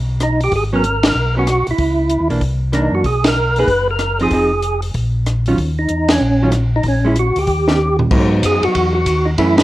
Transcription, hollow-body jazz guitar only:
0.73 F#3 B3 C#4
1.36 F#3 B3 C#4
2.30 E3 A#3 D4
2.72 E3 A#3 D4
3.58 A#3 D#4 G#4
4.21 F3 C4 D#4 G#4
4.32 F3 C4 D#4 G#4
5.48 D#3 F#3 C#4 F4
6.42 D#3 F#3 C#4 F4
7.05 G#3 C#4 E4
7.67 D#3 B3 C#4 G4
8.12 F#3 B3 D#4
9.38 E3 A3 C#4

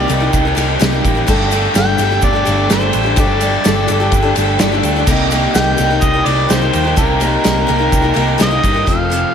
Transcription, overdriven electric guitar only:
Already playing: C3 D#3 G3
0.09 G3 D#4 G4
0.56 G3 D#4 G4
0.79 D#3 G3 D#4 G4
1.03 G3 D#4 G4
1.26 G3 A3 D4 G4
1.50 G3 A3 D4 G4
1.98 A3 D4 G4
2.44 A3 D4 G4
2.67 G3 A3 D4 G4
2.92 A3 D4 G4
3.15 G3 A3 D4 G4
3.39 G3 A3 D4 G4
3.86 A3 D4 G4
4.35 A3 D4 G4
4.58 G3 A3 D4 G4
4.83 A3 D4 G4
5.06 C3 D#3 G3 D#4 G4
5.30 C3 D#3 G3 D#4 G4
5.77 G3 D#4 G4
6.26 G3 D#4 G4
6.49 D#3 G3 D#4 G4
6.72 G3 D#4 G4
6.96 C3 D#3 G3 D#4 G4
7.20 C3 D#3 G3 D#4 G4
7.68 G3 D#4 G4
8.14 G3 D#4 G4
8.38 D#3 G3 D#4 G4
8.62 G3 D#4 G4
8.87 F2
9.10 C3

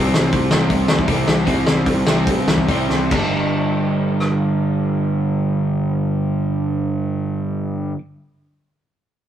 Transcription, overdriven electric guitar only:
Already playing: C3 G3 C4
0.51 C3 G3 C4
1.07 C3 G3 C4
1.45 C3 G3 C4
2.06 C3 G3 C4
2.68 C3 G3 C4
3.10 G2 D3
3.14 G3

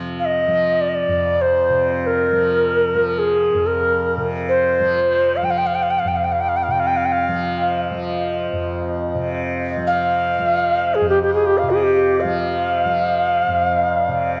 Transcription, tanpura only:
Already playing: F2 C3 F3
0.47 F3
1.08 F2
1.70 C3
2.32 F3
2.95 F3
3.54 F2
4.17 C3
4.80 F3
5.42 F3
6.05 F2
6.68 C3
7.28 F3
7.91 F3
8.53 F2
9.15 C3
9.77 F3
10.39 F3
11.01 F2
11.63 C3
12.24 F3
12.85 F3
13.48 F2
14.08 C3

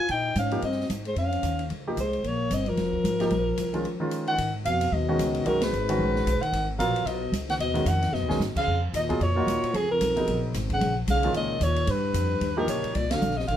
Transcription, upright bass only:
0.09 A#2
0.36 G#2
0.63 G2
0.89 G#2
1.16 F2
1.43 D#2
1.71 C#2
1.97 C2
2.24 A#1
2.50 G1
2.77 F1
3.04 G#1
3.31 A#1
3.58 C2
4.38 G#2
4.65 F2
4.92 D#2
5.19 C#2
5.46 B1
5.73 G#1
5.99 A#1
6.26 B1
6.42 muted upright bass stroke
6.53 G#1
6.79 A#1
7.05 B1
7.32 C#2
7.59 D#2
7.86 F2
8.12 F#2
8.22 D#2
8.30 B1
8.39 G#2
8.56 muted upright bass stroke
8.67 F2
8.94 D#2
9.20 F2
9.47 D#2
9.63 muted upright bass stroke
9.74 C#2
10.01 B1
10.27 A#1
10.54 G#1
10.81 A#1
11.08 B1
11.35 C#2
11.61 D#2
11.87 G2
12.14 F2
12.41 D#2
12.68 C#2
12.84 muted upright bass stroke
12.95 C2
13.22 A#1
13.48 A1

